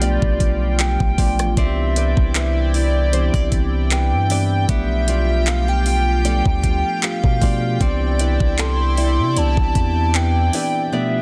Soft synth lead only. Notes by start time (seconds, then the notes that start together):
0.03 D5
0.81 G5
1.58 E5
2.36 E5
2.75 D5
3.92 G5
4.69 E5
5.48 F5
5.69 G5
5.87 G5
7.04 F5
7.81 D5
8.59 C6
9.38 A5
10.15 G5
10.94 E5